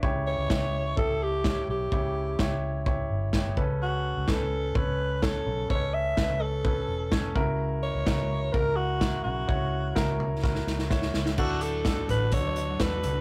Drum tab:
CC |----------------|----------------|----------------|----------------|
HH |----------------|----------------|----------------|----------------|
SD |----o-------o---|----o-------o---|----o-------o---|----o-------o---|
FT |----------------|----------------|----------------|----------------|
BD |o---o---o---o---|o---o---o---o-o-|----o---o---o---|o---o---o---o-o-|

CC |----------------|----------------|x---------------|
HH |----------------|----------------|--x-x-x-x-x-x-x-|
SD |----o-------o---|----o---oooooooo|----o-------o---|
FT |----------------|------o---------|------o-------o-|
BD |----o---o---o---|o---o---o---o---|o---o---o---o---|